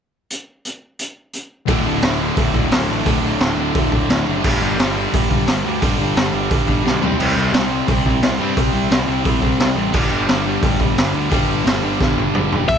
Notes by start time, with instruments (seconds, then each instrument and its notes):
0.30 closed hi-hat
0.65 closed hi-hat
0.99 closed hi-hat
1.33 closed hi-hat
1.66 picked electric bass D1, distorted electric guitar D2 A2 D3, kick, open hi-hat
1.72 overdriven electric guitar D3
1.85 picked electric bass D1, distorted electric guitar D2 A2 D3
2.02 picked electric bass D1, distorted electric guitar D2 A2 D3, snare, open hi-hat
2.19 distorted electric guitar D2 A2 D3
2.36 picked electric bass D1, distorted electric guitar D2 A2 D3, kick, open hi-hat
2.54 picked electric bass D1, distorted electric guitar D2 A2 D3, kick
2.71 picked electric bass D1, distorted electric guitar D2 A2 D3, snare, open hi-hat
2.88 picked electric bass A1, distorted electric guitar D2 A2 D3
3.04 picked electric bass D1, distorted electric guitar D2 A2 D3, kick, open hi-hat
3.21 picked electric bass D1, distorted electric guitar D2 A2 D3
3.39 picked electric bass D1, distorted electric guitar D2 A2 D3, snare, open hi-hat
3.56 picked electric bass D1, distorted electric guitar D2 A2 D3
3.73 picked electric bass D1, distorted electric guitar D2 A2 D3, kick, open hi-hat
3.91 picked electric bass D1, distorted electric guitar D2 A2 D3, kick
4.08 picked electric bass D1, distorted electric guitar D2 A2 D3, snare, open hi-hat
4.27 picked electric bass F#1, distorted electric guitar D2 A2 D3
4.44 picked electric bass G1, distorted electric guitar G2 D3 G3, kick, crash
4.60 picked electric bass G1, distorted electric guitar G2 D3 G3
4.78 picked electric bass G1, distorted electric guitar G2 D3 G3, snare, open hi-hat
4.96 distorted electric guitar G2 D3 G3
5.12 picked electric bass G1, distorted electric guitar G2 D3 G3, kick, open hi-hat
5.29 picked electric bass G1, distorted electric guitar G2 D3 G3, kick
5.46 picked electric bass G1, distorted electric guitar G2 D3 G3, snare, open hi-hat
5.64 picked electric bass D2, distorted electric guitar G2 D3 G3
5.81 picked electric bass G1, distorted electric guitar G2 D3 G3, kick, open hi-hat
5.97 picked electric bass G1, distorted electric guitar G2 D3 G3
6.15 picked electric bass G1, distorted electric guitar G2 D3 G3, snare, open hi-hat
6.33 picked electric bass G1, distorted electric guitar G2 D3 G3
6.49 picked electric bass G1, distorted electric guitar G2 D3 G3, kick, open hi-hat
6.66 picked electric bass G1, distorted electric guitar G2 D3 G3, kick
6.83 picked electric bass B1, distorted electric guitar G2 D3 G3, snare
7.01 picked electric bass C2, distorted electric guitar C3 G3 C4, floor tom
7.18 picked electric bass C2, distorted electric guitar C3 G3 C4, crash
7.36 picked electric bass C2, distorted electric guitar C3 G3 C4
7.53 picked electric bass C2, distorted electric guitar C3 G3 C4, snare, open hi-hat
7.69 distorted electric guitar C3 G3 C4
7.88 picked electric bass C2, distorted electric guitar C3 G3 C4, kick, open hi-hat
8.05 picked electric bass C2, distorted electric guitar C3 G3 C4, kick
8.22 picked electric bass C2, distorted electric guitar C3 G3 C4, snare, open hi-hat
8.39 picked electric bass G2, distorted electric guitar C3 G3 C4
8.56 picked electric bass C2, distorted electric guitar C3 G3 C4, kick, open hi-hat
8.73 picked electric bass C2, distorted electric guitar C3 G3 C4
8.89 picked electric bass C2, distorted electric guitar C3 G3 C4, snare, open hi-hat
9.06 picked electric bass C2, distorted electric guitar C3 G3 C4
9.23 picked electric bass C2, distorted electric guitar C3 G3 C4, kick, open hi-hat
9.41 picked electric bass C2, distorted electric guitar C3 G3 C4, kick
9.59 picked electric bass C2, distorted electric guitar C3 G3 C4, snare, open hi-hat
9.75 picked electric bass A1, distorted electric guitar C3 G3 C4
9.91 picked electric bass G1, distorted electric guitar G2 D3 G3, kick, crash
9.97 overdriven electric guitar G3
10.10 picked electric bass G1, distorted electric guitar G2 D3 G3
10.27 picked electric bass G1, distorted electric guitar G2 D3 G3, snare, open hi-hat
10.45 distorted electric guitar G2 D3 G3
10.63 picked electric bass G1, distorted electric guitar G2 D3 G3, kick, open hi-hat
10.80 picked electric bass G1, distorted electric guitar G2 D3 G3, kick
10.97 picked electric bass G1, distorted electric guitar G2 D3 G3, snare, open hi-hat
11.14 picked electric bass D2, distorted electric guitar G2 D3 G3
11.31 picked electric bass G1, distorted electric guitar G2 D3 G3, kick, open hi-hat
11.49 picked electric bass G1, distorted electric guitar G2 D3 G3
11.65 picked electric bass G1, distorted electric guitar G2 D3 G3, snare, open hi-hat
11.82 picked electric bass G1, distorted electric guitar G2 D3 G3
12.00 picked electric bass G1, distorted electric guitar G2 D3 G3, kick, snare
12.17 picked electric bass G1, distorted electric guitar G2 D3 G3, high tom
12.34 picked electric bass G1, distorted electric guitar G2 D3 G3, mid tom
12.51 picked electric bass E1, distorted electric guitar G2 D3 G3, floor tom
12.68 picked electric bass D1, distorted electric guitar D2 A2 D3, lead electric guitar E5, kick, open hi-hat